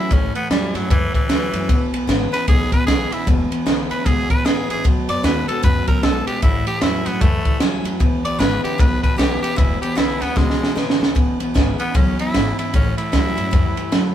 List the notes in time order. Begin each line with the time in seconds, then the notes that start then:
Already playing: C#4 E4
0.11 A1 A2 E3 C#4, kick, ride
0.35 A2 E3 B3, ride
0.49 E2 A2 E3 F#3 G3 C#4 E4, snare, ride
0.73 G2 A2 F#3 C#4 E4, snare, ride
0.89 E2 F#2 A2 E3, kick, ride
1.13 A2 E3, muted upright bass stroke, kick, ride
1.28 D2 A2 E3 F#3 G3 C#4 E4, snare, ride
1.53 F#2 A2 F#3 C#4 E4, ride
1.68 E1 E2 B2, kick, ride
1.92 B1 E2 B2, ride
2.07 G#1 E2 C#3 D3 G#3 B3 E4, snare, ride
2.32 E2 C#3 B3 E4 B4, snare, ride
2.48 B1 E2 B2 G#4, kick, ride
2.72 E2 B2 B4, muted upright bass stroke, kick, ride
2.87 B1 E2 C#3 D3 G#3 B3 E4 G#4, snare, ride
3.11 E2 C#3 B3 E4, muted upright bass stroke, ride
3.27 E1 E2 B2, kick, ride
3.50 E2 B2, ride
3.66 B1 E2 C#3 D3 G#3 B3 E4, snare, ride
3.90 D2 E2 C#3 B3 E4 B4, ride
4.05 C#2 E2 B2 G#4, kick, ride
4.29 E2 B2 B4, muted upright bass stroke, kick, ride
4.45 A1 E2 C#3 D3 G#3 B3 E4 G#4, snare, ride
4.69 A1 E2 C#3 G#4, ride
4.84 B1 B2 F#3, kick, ride
5.09 F#2 B2 F#3 D5, ride
5.23 D#2 B2 D#3 G#3 A3 B3 F#4 B4, snare, ride
5.48 B2 G#3 B3 F#4 A4, ride
5.63 F#2 B2 C#3 F#3 B4, kick, ride
5.87 B2 F#3 A#4, muted upright bass stroke, kick, ride
6.03 B1 B2 G#3 A4, snare, ride
6.27 B2 G#3 G4, muted upright bass stroke, ride
6.42 A1 A2 E3 E4, kick, ride
6.67 A2 E3 G4, muted upright bass stroke, ride
6.81 E2 A2 E3 F#3 G3 C#4 E4, snare, ride
7.06 G2 A2 F#3 B3 C#4 E4, snare, ride
7.21 E2 F#2 A2 E3 A3, kick, ride
7.45 A2 E3, muted upright bass stroke, kick, ride
7.60 D2 A2 E3 F#3 G3 C#4 E4, snare, ride
7.84 F#2 A2 F#3 C#4 E4, ride
8.00 E1 E2 B2, kick, ride
8.23 B1 E2 B2 D5, ride
8.39 G#1 E2 C#3 D3 G#3 B3 E4 B4, snare, ride
8.64 E2 C#3 G4, ride
8.78 B1 E2 B2 B4, kick, ride
9.03 E2 B2 B4, kick, ride
9.16 B1 E2 C#3 D3 G#3 B3 E4 G4, snare, ride
9.41 E2 C#3 B3 E4 G4, ride
9.56 E1 E2 B2 E4, kick, ride
9.81 E2 B2 G4, muted upright bass stroke, ride
9.95 B1 E2 C#3 D3 G#3 B3 E4, snare, ride
10.20 D2 E2 C#3 B3 E4, snare, ride
10.36 C#2 E2 B2 G#3, kick, snare
10.50 snare
10.60 E2 B2, muted upright bass stroke, snare
10.75 A1 E2 C#3 D3 G#3 B3 E4, snare
10.90 snare
11.00 C#2 E2 C#3 B3 E4, snare
11.15 E1 E2 B2, kick, ride
11.40 B1 E2 B2, ride
11.54 G#1 E2 C#3 D3 G#3 B3 E4, kick, snare, ride
11.78 E2 C#3 B3 E4, muted upright bass stroke, ride
11.94 B1 E2 F#2 B2 C#4, kick, ride
12.19 E2 B2 E4, ride
12.34 G#1 E2 G#2 C#3, snare, ride
12.59 E2 C#3 E4, ride
12.74 A1 A2 E3 C#4, kick, ride
12.97 A2 E3 E4, ride
13.12 E2 A2 E3 F#3 G3 C#4 E4, kick, snare, ride
13.36 G2 A2 F#3 C#4 E4, ride
13.51 F#2 G2 A2 E3, kick, ride
13.77 A2 E3, muted upright bass stroke, ride
13.92 D2 F#2 A2 F#3, snare, ride